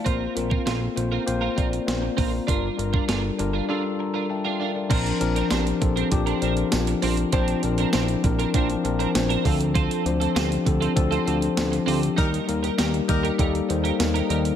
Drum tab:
CC |----------------|----------------|x---------------|----------------|
HH |x-x-x-x-x-xxx-o-|x-x-x-x---------|xxxxxxxxxxxxxxox|xxxxxxxxxxxxxxox|
TB |----------------|----------------|----x-------x---|----x-------x---|
SD |----o-------o---|----o-----------|----o-------o---|----o-------o---|
BD |o--o------o---o-|o--o------------|o-----o-o-------|o-----o-o-----o-|

CC |----------------|----------------|
HH |xxxxxxxxxxxxxxox|xxxxxxxxxxxxxxxx|
TB |----x-------x---|----x-------x---|
SD |----o-------o---|----o-------o---|
BD |o-----o-o-------|o-----o-o-------|